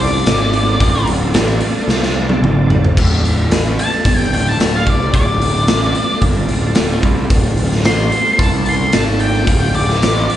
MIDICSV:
0, 0, Header, 1, 6, 480
1, 0, Start_track
1, 0, Key_signature, -1, "minor"
1, 0, Tempo, 541028
1, 720, Time_signature, 4, 2, 24, 8
1, 9198, End_track
2, 0, Start_track
2, 0, Title_t, "Lead electric guitar"
2, 0, Program_c, 0, 29
2, 11, Note_on_c, 0, 74, 99
2, 935, Note_off_c, 0, 74, 0
2, 3368, Note_on_c, 0, 81, 105
2, 3705, Note_off_c, 0, 81, 0
2, 3705, Note_on_c, 0, 79, 105
2, 3828, Note_off_c, 0, 79, 0
2, 3856, Note_on_c, 0, 79, 81
2, 3963, Note_off_c, 0, 79, 0
2, 3981, Note_on_c, 0, 81, 81
2, 4202, Note_off_c, 0, 81, 0
2, 4224, Note_on_c, 0, 77, 81
2, 4345, Note_off_c, 0, 77, 0
2, 4345, Note_on_c, 0, 74, 83
2, 4560, Note_off_c, 0, 74, 0
2, 4571, Note_on_c, 0, 74, 100
2, 5496, Note_off_c, 0, 74, 0
2, 6973, Note_on_c, 0, 84, 95
2, 7432, Note_off_c, 0, 84, 0
2, 7445, Note_on_c, 0, 81, 105
2, 7675, Note_off_c, 0, 81, 0
2, 7708, Note_on_c, 0, 84, 86
2, 7927, Note_off_c, 0, 84, 0
2, 7936, Note_on_c, 0, 81, 80
2, 8161, Note_off_c, 0, 81, 0
2, 8168, Note_on_c, 0, 79, 85
2, 8630, Note_off_c, 0, 79, 0
2, 8651, Note_on_c, 0, 74, 99
2, 9198, Note_off_c, 0, 74, 0
2, 9198, End_track
3, 0, Start_track
3, 0, Title_t, "Tonewheel organ"
3, 0, Program_c, 1, 16
3, 0, Note_on_c, 1, 62, 75
3, 0, Note_on_c, 1, 65, 76
3, 0, Note_on_c, 1, 69, 79
3, 0, Note_on_c, 1, 74, 73
3, 2593, Note_off_c, 1, 62, 0
3, 2594, Note_off_c, 1, 69, 0
3, 2595, Note_off_c, 1, 74, 0
3, 2596, Note_off_c, 1, 65, 0
3, 2610, Note_on_c, 1, 74, 69
3, 2617, Note_on_c, 1, 65, 64
3, 2623, Note_on_c, 1, 62, 71
3, 2623, Note_on_c, 1, 69, 72
3, 6430, Note_off_c, 1, 74, 0
3, 6433, Note_off_c, 1, 65, 0
3, 6436, Note_off_c, 1, 62, 0
3, 6436, Note_off_c, 1, 69, 0
3, 6483, Note_on_c, 1, 74, 72
3, 6489, Note_on_c, 1, 69, 73
3, 6497, Note_on_c, 1, 65, 79
3, 6500, Note_on_c, 1, 62, 74
3, 9198, Note_off_c, 1, 62, 0
3, 9198, Note_off_c, 1, 65, 0
3, 9198, Note_off_c, 1, 69, 0
3, 9198, Note_off_c, 1, 74, 0
3, 9198, End_track
4, 0, Start_track
4, 0, Title_t, "Picked electric bass"
4, 0, Program_c, 2, 34
4, 0, Note_on_c, 2, 36, 84
4, 206, Note_off_c, 2, 36, 0
4, 226, Note_on_c, 2, 32, 94
4, 678, Note_off_c, 2, 32, 0
4, 714, Note_on_c, 2, 26, 87
4, 939, Note_off_c, 2, 26, 0
4, 953, Note_on_c, 2, 26, 91
4, 1179, Note_off_c, 2, 26, 0
4, 1194, Note_on_c, 2, 33, 95
4, 1419, Note_off_c, 2, 33, 0
4, 1666, Note_on_c, 2, 36, 84
4, 2117, Note_off_c, 2, 36, 0
4, 2148, Note_on_c, 2, 32, 92
4, 2598, Note_off_c, 2, 32, 0
4, 2640, Note_on_c, 2, 26, 81
4, 2862, Note_off_c, 2, 26, 0
4, 2873, Note_on_c, 2, 26, 76
4, 3098, Note_off_c, 2, 26, 0
4, 3113, Note_on_c, 2, 33, 92
4, 3338, Note_off_c, 2, 33, 0
4, 3593, Note_on_c, 2, 31, 79
4, 3816, Note_off_c, 2, 31, 0
4, 3821, Note_on_c, 2, 26, 63
4, 4052, Note_off_c, 2, 26, 0
4, 4060, Note_on_c, 2, 26, 91
4, 4291, Note_off_c, 2, 26, 0
4, 4317, Note_on_c, 2, 36, 83
4, 4541, Note_off_c, 2, 36, 0
4, 4559, Note_on_c, 2, 26, 82
4, 4781, Note_off_c, 2, 26, 0
4, 4793, Note_on_c, 2, 26, 82
4, 5018, Note_off_c, 2, 26, 0
4, 5035, Note_on_c, 2, 33, 88
4, 5260, Note_off_c, 2, 33, 0
4, 5514, Note_on_c, 2, 31, 84
4, 5739, Note_off_c, 2, 31, 0
4, 5758, Note_on_c, 2, 26, 68
4, 5982, Note_off_c, 2, 26, 0
4, 5997, Note_on_c, 2, 26, 96
4, 6221, Note_off_c, 2, 26, 0
4, 6237, Note_on_c, 2, 36, 89
4, 6461, Note_off_c, 2, 36, 0
4, 6480, Note_on_c, 2, 26, 88
4, 6703, Note_off_c, 2, 26, 0
4, 6715, Note_on_c, 2, 26, 90
4, 6940, Note_off_c, 2, 26, 0
4, 6960, Note_on_c, 2, 33, 88
4, 7183, Note_off_c, 2, 33, 0
4, 7441, Note_on_c, 2, 36, 90
4, 7887, Note_off_c, 2, 36, 0
4, 7928, Note_on_c, 2, 32, 93
4, 8371, Note_off_c, 2, 32, 0
4, 8405, Note_on_c, 2, 26, 74
4, 8626, Note_off_c, 2, 26, 0
4, 8645, Note_on_c, 2, 26, 82
4, 8866, Note_off_c, 2, 26, 0
4, 8878, Note_on_c, 2, 33, 87
4, 9102, Note_off_c, 2, 33, 0
4, 9198, End_track
5, 0, Start_track
5, 0, Title_t, "Muted picked electric bass strokes"
5, 1434, Note_on_c, 9, 29, 41
5, 1522, Note_off_c, 9, 29, 0
5, 3354, Note_on_c, 9, 29, 36
5, 3442, Note_off_c, 9, 29, 0
5, 5274, Note_on_c, 9, 29, 40
5, 5363, Note_off_c, 9, 29, 0
5, 7203, Note_on_c, 9, 29, 38
5, 7292, Note_off_c, 9, 29, 0
5, 9121, Note_on_c, 9, 29, 41
5, 9198, Note_off_c, 9, 29, 0
5, 9198, End_track
6, 0, Start_track
6, 0, Title_t, "Drums"
6, 0, Note_on_c, 9, 46, 51
6, 85, Note_off_c, 9, 46, 0
6, 234, Note_on_c, 9, 46, 78
6, 241, Note_on_c, 9, 38, 99
6, 323, Note_off_c, 9, 46, 0
6, 330, Note_off_c, 9, 38, 0
6, 473, Note_on_c, 9, 46, 52
6, 562, Note_off_c, 9, 46, 0
6, 713, Note_on_c, 9, 46, 77
6, 714, Note_on_c, 9, 36, 95
6, 802, Note_off_c, 9, 36, 0
6, 802, Note_off_c, 9, 46, 0
6, 952, Note_on_c, 9, 46, 56
6, 1041, Note_off_c, 9, 46, 0
6, 1189, Note_on_c, 9, 46, 77
6, 1196, Note_on_c, 9, 38, 109
6, 1278, Note_off_c, 9, 46, 0
6, 1285, Note_off_c, 9, 38, 0
6, 1423, Note_on_c, 9, 46, 58
6, 1512, Note_off_c, 9, 46, 0
6, 1676, Note_on_c, 9, 38, 65
6, 1764, Note_off_c, 9, 38, 0
6, 1797, Note_on_c, 9, 38, 59
6, 1886, Note_off_c, 9, 38, 0
6, 2035, Note_on_c, 9, 48, 64
6, 2124, Note_off_c, 9, 48, 0
6, 2163, Note_on_c, 9, 47, 85
6, 2251, Note_off_c, 9, 47, 0
6, 2398, Note_on_c, 9, 43, 91
6, 2487, Note_off_c, 9, 43, 0
6, 2524, Note_on_c, 9, 43, 87
6, 2613, Note_off_c, 9, 43, 0
6, 2637, Note_on_c, 9, 36, 95
6, 2644, Note_on_c, 9, 49, 112
6, 2726, Note_off_c, 9, 36, 0
6, 2733, Note_off_c, 9, 49, 0
6, 2884, Note_on_c, 9, 46, 55
6, 2973, Note_off_c, 9, 46, 0
6, 3116, Note_on_c, 9, 46, 74
6, 3123, Note_on_c, 9, 38, 102
6, 3205, Note_off_c, 9, 46, 0
6, 3212, Note_off_c, 9, 38, 0
6, 3363, Note_on_c, 9, 46, 61
6, 3451, Note_off_c, 9, 46, 0
6, 3594, Note_on_c, 9, 36, 92
6, 3601, Note_on_c, 9, 46, 75
6, 3683, Note_off_c, 9, 36, 0
6, 3690, Note_off_c, 9, 46, 0
6, 3845, Note_on_c, 9, 46, 52
6, 3933, Note_off_c, 9, 46, 0
6, 4082, Note_on_c, 9, 46, 75
6, 4089, Note_on_c, 9, 38, 100
6, 4171, Note_off_c, 9, 46, 0
6, 4178, Note_off_c, 9, 38, 0
6, 4318, Note_on_c, 9, 36, 89
6, 4324, Note_on_c, 9, 46, 50
6, 4407, Note_off_c, 9, 36, 0
6, 4412, Note_off_c, 9, 46, 0
6, 4558, Note_on_c, 9, 36, 107
6, 4562, Note_on_c, 9, 46, 69
6, 4646, Note_off_c, 9, 36, 0
6, 4650, Note_off_c, 9, 46, 0
6, 4804, Note_on_c, 9, 46, 58
6, 4893, Note_off_c, 9, 46, 0
6, 5035, Note_on_c, 9, 46, 72
6, 5042, Note_on_c, 9, 38, 110
6, 5124, Note_off_c, 9, 46, 0
6, 5131, Note_off_c, 9, 38, 0
6, 5276, Note_on_c, 9, 46, 51
6, 5365, Note_off_c, 9, 46, 0
6, 5514, Note_on_c, 9, 46, 69
6, 5517, Note_on_c, 9, 36, 92
6, 5603, Note_off_c, 9, 46, 0
6, 5606, Note_off_c, 9, 36, 0
6, 5755, Note_on_c, 9, 46, 45
6, 5844, Note_off_c, 9, 46, 0
6, 5987, Note_on_c, 9, 46, 76
6, 5994, Note_on_c, 9, 38, 102
6, 6076, Note_off_c, 9, 46, 0
6, 6083, Note_off_c, 9, 38, 0
6, 6235, Note_on_c, 9, 46, 45
6, 6238, Note_on_c, 9, 36, 100
6, 6324, Note_off_c, 9, 46, 0
6, 6327, Note_off_c, 9, 36, 0
6, 6478, Note_on_c, 9, 46, 73
6, 6480, Note_on_c, 9, 36, 106
6, 6567, Note_off_c, 9, 46, 0
6, 6568, Note_off_c, 9, 36, 0
6, 6718, Note_on_c, 9, 46, 58
6, 6807, Note_off_c, 9, 46, 0
6, 6848, Note_on_c, 9, 38, 30
6, 6937, Note_off_c, 9, 38, 0
6, 6962, Note_on_c, 9, 46, 75
6, 6969, Note_on_c, 9, 38, 111
6, 7050, Note_off_c, 9, 46, 0
6, 7057, Note_off_c, 9, 38, 0
6, 7203, Note_on_c, 9, 46, 58
6, 7292, Note_off_c, 9, 46, 0
6, 7445, Note_on_c, 9, 36, 102
6, 7448, Note_on_c, 9, 46, 78
6, 7533, Note_off_c, 9, 36, 0
6, 7536, Note_off_c, 9, 46, 0
6, 7683, Note_on_c, 9, 46, 50
6, 7772, Note_off_c, 9, 46, 0
6, 7918, Note_on_c, 9, 46, 81
6, 7925, Note_on_c, 9, 38, 108
6, 8007, Note_off_c, 9, 46, 0
6, 8014, Note_off_c, 9, 38, 0
6, 8160, Note_on_c, 9, 46, 51
6, 8248, Note_off_c, 9, 46, 0
6, 8403, Note_on_c, 9, 46, 80
6, 8404, Note_on_c, 9, 36, 99
6, 8492, Note_off_c, 9, 46, 0
6, 8493, Note_off_c, 9, 36, 0
6, 8645, Note_on_c, 9, 46, 56
6, 8734, Note_off_c, 9, 46, 0
6, 8777, Note_on_c, 9, 38, 31
6, 8865, Note_off_c, 9, 38, 0
6, 8893, Note_on_c, 9, 46, 78
6, 8900, Note_on_c, 9, 38, 113
6, 8982, Note_off_c, 9, 46, 0
6, 8989, Note_off_c, 9, 38, 0
6, 9135, Note_on_c, 9, 46, 55
6, 9198, Note_off_c, 9, 46, 0
6, 9198, End_track
0, 0, End_of_file